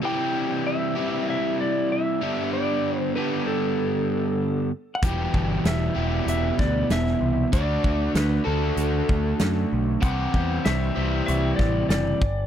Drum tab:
HH |----------------|----------------|x---x---x---x---|x---x---x---x---|
SD |----------------|----------------|----o-----o-oo--|----o-------o---|
BD |----------------|----------------|o-o-------o-----|o-o-------o-----|

HH |x---x---x---x---|
SD |----o-----o-o---|
BD |o-o-------o---o-|